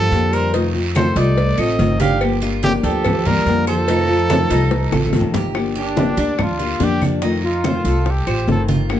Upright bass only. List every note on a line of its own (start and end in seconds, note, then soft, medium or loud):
0.11 1.10 F2 medium
1.16 1.55 C2 medium
1.58 1.78 A1 medium
1.79 2.77 G1 medium
2.83 3.42 D2 medium
3.46 4.44 F2 medium
4.50 4.89 C2 medium
4.92 5.12 A1 medium
5.13 6.12 G1 medium
6.17 6.76 D2 medium
6.80 7.79 F2 medium
7.84 8.24 C2 medium
8.27 8.46 A1 medium
8.47 9.00 G1 medium